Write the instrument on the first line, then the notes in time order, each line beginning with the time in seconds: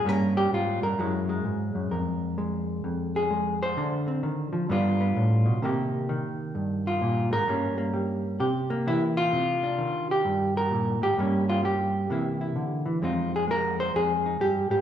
hollow-body jazz guitar
0.05 G2 G3 A#3 C#4
0.09 A#4
0.37 G4
0.51 G#2 F4
0.82 G2 A#4
0.98 F#2 F#3 G#3 E4
1.29 G#3
1.45 G#2
1.75 F#2
1.91 F2 A#4
2.38 G#3
2.84 F2
3.16 G#4
3.30 G#3
3.63 C5
3.77 D3 D4
4.08 C4
4.23 D#3
4.53 F3
4.69 G2 G3 B3 D4 F4
5.01 B3
5.16 A2
5.46 B2
5.62 C3 D#3 A#3 D#4 G4
6.09 D#3
6.55 G2
6.87 F4
7.01 A#2
7.31 G#2 A#4
7.47 G2 G3 A#3 C#4
7.78 A#3
7.94 G3
8.40 C3 G4
8.70 A#3
8.87 E3 E4
9.17 F4
9.33 C3
9.63 D4
9.78 D#3
10.11 G4
10.25 G2
10.57 A#4
10.71 A#2
11.01 G#2 G4
11.18 G2 G3 A#3 C#4
11.49 F4
11.63 G3 G4
12.10 C3 E3 A#3 E4
12.41 E4
12.56 D3
12.86 E3
13.02 F2 G#3 C4 D#4 F4
13.36 G#4
13.48 G#3 A#4
13.80 C5
13.95 F2 G#4
14.26 D#4
14.41 G2 G4
14.70 G#2 G4